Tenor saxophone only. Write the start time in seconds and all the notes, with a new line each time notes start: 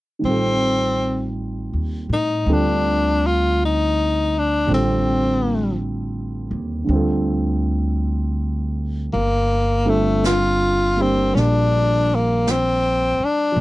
0.25 C4
2.13 D#4
2.53 D4
3.26 F4
3.65 D#4
4.39 D4
4.74 C4
9.13 A#3
9.90 A3
10.26 F4
11.02 C4
11.34 C#4
11.40 D4
12.15 A#3
12.51 C4
13.24 D4